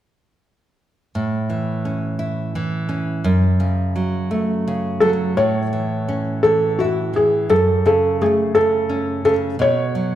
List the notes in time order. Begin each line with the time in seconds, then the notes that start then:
1.15 A2
1.50 E3
1.85 C#4
2.19 E4
2.55 E3
2.89 C#4
3.24 F#2
3.60 C#3
3.96 F#3
4.31 A3
4.67 C#3
5.00 F#3 A4
5.37 A2 C#5
5.73 E3
6.08 C#4
6.43 E3 A4
6.79 E4 F#4
7.13 E3 G#4
7.50 F#2 A4
7.86 C#3 A4
8.21 A3 G#4
8.55 C#3 A4
8.89 C#4
9.25 C#3 A4
9.59 B2 C#5
9.95 F#3